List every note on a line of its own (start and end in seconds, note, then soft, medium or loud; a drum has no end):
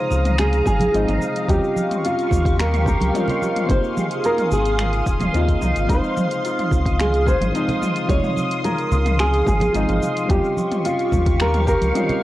0.00 0.91 C3 medium
0.00 0.92 F3 medium
0.00 0.93 G#3 medium
0.00 0.94 C4 medium
0.00 0.93 D#4 medium
0.00 0.96 D#4 loud
0.00 1.53 F4 medium
0.00 2.11 G#4 medium
0.00 0.39 C5 loud
0.00 10.25 F5 medium
0.00 1.46 A#5 medium
0.00 1.45 D#6 medium
0.10 0.62 C#2 medium
0.10 low conga medium
0.10 shaker medium
0.25 closed hi-hat soft
0.25 mid tom medium
0.25 shaker soft
0.38 0.65 G#4 loud
0.38 finger snap medium
0.38 closed hi-hat medium
0.38 shaker soft
0.53 closed hi-hat soft
0.53 shaker soft
0.66 0.88 G#1 medium
0.66 1.45 G#4 loud
0.66 kick loud
0.66 mid tom medium
0.66 shaker medium
0.80 closed hi-hat soft
0.80 high conga medium
0.80 low conga medium
0.80 shaker soft
0.92 1.05 G#1 medium
0.92 1.45 F3 loud
0.92 1.45 G#3 loud
0.92 1.46 C4 loud
0.92 1.48 D#4 loud
0.92 closed hi-hat medium
0.92 shaker soft
0.96 1.47 D#4 loud
1.08 1.19 G#1 loud
1.08 closed hi-hat soft
1.08 mid tom medium
1.08 shaker soft
1.21 high conga medium
1.21 shaker medium
1.36 closed hi-hat soft
1.36 shaker soft
1.45 1.60 D#2 medium
1.45 3.09 G3 medium
1.45 3.10 C4 medium
1.45 3.13 D#4 medium
1.45 3.67 G4 medium
1.45 12.23 C6 medium
1.45 3.67 C#6 loud
1.45 kick loud
1.45 closed hi-hat medium
1.45 mid tom medium
1.49 3.12 C#4 medium
1.49 3.13 F4 loud
1.49 2.06 G4 loud
1.49 shaker soft
1.64 shaker soft
1.76 high conga medium
1.76 shaker medium
1.91 closed hi-hat soft
1.91 mid tom medium
1.91 shaker soft
2.04 3.41 F4 medium
2.04 2.56 F4 medium
2.04 closed hi-hat medium
2.04 shaker soft
2.19 closed hi-hat soft
2.19 shaker soft
2.31 2.96 D#2 medium
2.31 kick medium
2.31 mid tom medium
2.31 low conga medium
2.31 shaker medium
2.45 kick loud
2.45 closed hi-hat soft
2.45 shaker soft
2.60 2.87 A#4 loud
2.60 finger snap medium
2.60 closed hi-hat medium
2.60 shaker soft
2.74 closed hi-hat soft
2.74 mid tom medium
2.74 shaker soft
2.86 4.30 G4 loud
2.86 3.70 A#4 loud
2.86 kick loud
2.86 shaker medium
3.01 3.12 C#2 medium
3.01 closed hi-hat soft
3.01 high conga medium
3.01 shaker soft
3.13 3.65 G3 loud
3.13 3.66 C4 medium
3.13 3.66 C#4 medium
3.13 5.34 D#4 loud
3.13 3.67 F4 loud
3.13 closed hi-hat medium
3.13 mid tom medium
3.13 shaker soft
3.28 closed hi-hat soft
3.28 low conga medium
3.28 shaker soft
3.42 5.94 F4 medium
3.42 high conga medium
3.42 shaker medium
3.56 closed hi-hat soft
3.56 mid tom medium
3.56 shaker soft
3.65 3.80 G#1 medium
3.65 5.29 A#3 medium
3.65 5.30 C4 medium
3.65 5.87 D#6 loud
3.65 kick loud
3.69 5.31 D#4 medium
3.69 5.33 F4 loud
3.69 5.87 G#4 medium
3.69 4.21 C5 loud
3.69 closed hi-hat medium
3.69 shaker soft
3.84 shaker soft
3.97 mid tom medium
3.97 high conga medium
3.97 shaker medium
4.11 closed hi-hat soft
4.11 shaker soft
4.24 5.06 G#4 medium
4.24 4.53 A#4 medium
4.24 closed hi-hat medium
4.24 shaker soft
4.38 closed hi-hat soft
4.38 mid tom medium
4.38 shaker soft
4.51 5.02 G#1 medium
4.51 5.58 G#4 medium
4.51 low conga medium
4.51 shaker medium
4.66 closed hi-hat soft
4.66 shaker soft
4.79 finger snap medium
4.79 closed hi-hat medium
4.79 mid tom medium
4.79 shaker soft
4.93 closed hi-hat soft
4.93 shaker soft
5.06 5.29 D#1 medium
5.06 7.26 G#4 medium
5.06 kick loud
5.06 shaker medium
5.20 closed hi-hat soft
5.20 mid tom medium
5.20 high conga medium
5.20 low conga medium
5.20 shaker soft
5.33 5.57 D#2 loud
5.33 5.85 A#3 loud
5.33 5.86 C4 medium
5.33 5.61 D#4 medium
5.33 5.86 D#4 medium
5.33 5.87 F4 loud
5.33 closed hi-hat soft
5.33 shaker soft
5.48 kick medium
5.48 closed hi-hat soft
5.48 shaker soft
5.61 5.73 C2 loud
5.61 5.88 D#4 medium
5.61 mid tom medium
5.61 high conga medium
5.61 shaker medium
5.76 5.87 G#1 medium
5.76 closed hi-hat soft
5.76 shaker soft
5.85 6.01 C#2 loud
5.85 7.49 F3 medium
5.85 7.50 G#3 medium
5.85 7.54 D#4 medium
5.85 kick loud
5.89 7.52 C4 medium
5.89 7.53 D#4 loud
5.89 7.03 C5 loud
5.89 10.26 D#6 loud
5.89 closed hi-hat medium
5.89 shaker soft
6.04 shaker soft
6.17 mid tom medium
6.17 high conga medium
6.17 shaker medium
6.31 closed hi-hat soft
6.31 shaker soft
6.44 7.81 F4 medium
6.44 closed hi-hat medium
6.44 shaker soft
6.59 closed hi-hat soft
6.59 mid tom medium
6.59 shaker soft
6.71 7.36 C#2 medium
6.71 kick medium
6.71 low conga medium
6.71 shaker medium
6.86 kick loud
6.86 closed hi-hat soft
6.86 shaker soft
7.00 7.28 G#4 loud
7.00 finger snap medium
7.00 closed hi-hat medium
7.00 mid tom medium
7.00 shaker soft
7.14 closed hi-hat soft
7.14 shaker soft
7.26 8.64 G#4 loud
7.26 7.79 C5 medium
7.26 kick loud
7.26 shaker medium
7.41 7.52 G#1 loud
7.41 closed hi-hat soft
7.41 mid tom medium
7.41 high conga medium
7.41 shaker soft
7.52 8.04 F3 loud
7.52 8.05 G#3 medium
7.52 8.06 C4 medium
7.52 9.74 D#4 medium
7.52 8.07 D#4 loud
7.52 closed hi-hat soft
7.52 shaker soft
7.68 closed hi-hat soft
7.68 low conga medium
7.68 shaker soft
7.82 10.34 F4 medium
7.82 mid tom medium
7.82 high conga medium
7.82 shaker medium
7.96 closed hi-hat soft
7.96 shaker soft
8.05 9.69 F3 medium
8.05 9.70 G#3 medium
8.09 8.21 C#2 loud
8.09 9.72 C3 medium
8.09 9.73 D#4 loud
8.09 8.61 C#5 loud
8.09 kick loud
8.09 closed hi-hat medium
8.09 shaker soft
8.24 mid tom medium
8.24 shaker soft
8.37 high conga medium
8.37 shaker medium
8.51 closed hi-hat soft
8.51 shaker soft
8.64 10.92 G#4 medium
8.64 9.16 A#4 loud
8.64 closed hi-hat medium
8.64 mid tom medium
8.64 shaker soft
8.79 closed hi-hat soft
8.79 shaker soft
8.91 9.43 C#2 medium
8.91 low conga medium
8.91 shaker medium
9.06 closed hi-hat soft
9.06 mid tom medium
9.06 shaker soft
9.19 9.45 G#4 loud
9.19 finger snap medium
9.19 closed hi-hat medium
9.19 shaker soft
9.34 closed hi-hat soft
9.34 shaker soft
9.47 9.69 G#1 medium
9.47 10.30 G#4 loud
9.47 kick loud
9.47 mid tom medium
9.47 shaker medium
9.60 closed hi-hat soft
9.60 high conga medium
9.60 low conga medium
9.60 shaker soft
9.72 9.86 G#1 medium
9.72 10.25 F3 loud
9.72 10.26 G#3 medium
9.72 10.27 C4 medium
9.72 10.29 D#4 loud
9.72 10.27 D#4 loud
9.72 closed hi-hat medium
9.72 shaker soft
9.89 10.00 G#1 loud
9.89 closed hi-hat soft
9.89 mid tom medium
9.89 shaker soft
10.03 high conga medium
10.03 shaker medium
10.17 closed hi-hat soft
10.17 shaker soft
10.25 10.41 D#2 loud
10.25 11.89 G3 medium
10.25 11.91 C4 medium
10.25 12.23 G4 medium
10.25 12.23 F5 medium
10.25 12.23 C#6 medium
10.25 kick loud
10.30 11.92 C#4 medium
10.30 11.94 D#4 medium
10.30 11.93 F4 loud
10.30 10.87 G4 loud
10.30 closed hi-hat medium
10.30 mid tom medium
10.30 shaker soft
10.44 shaker soft
10.57 high conga medium
10.57 shaker medium
10.72 closed hi-hat soft
10.72 mid tom medium
10.72 shaker soft
10.84 12.21 F4 medium
10.84 11.42 F4 loud
10.84 closed hi-hat medium
10.84 shaker soft
10.99 closed hi-hat soft
10.99 shaker soft
11.12 11.77 D#2 medium
11.12 kick medium
11.12 mid tom medium
11.12 low conga medium
11.12 shaker medium
11.26 kick loud
11.26 closed hi-hat soft
11.26 shaker soft
11.40 11.66 A#4 loud
11.40 finger snap medium
11.40 closed hi-hat medium
11.40 shaker soft
11.54 closed hi-hat soft
11.54 mid tom medium
11.54 shaker soft
11.67 12.23 G4 loud
11.67 12.23 A#4 loud
11.67 kick loud
11.67 shaker medium
11.81 11.92 C#2 loud
11.81 closed hi-hat soft
11.81 high conga medium
11.81 shaker soft
11.93 12.23 G3 loud
11.93 12.23 C4 loud
11.93 12.23 C#4 medium
11.93 12.23 D#4 medium
11.93 12.23 F4 loud
11.93 closed hi-hat medium
11.93 mid tom medium
11.93 shaker soft
12.09 closed hi-hat soft
12.09 low conga medium
12.09 shaker soft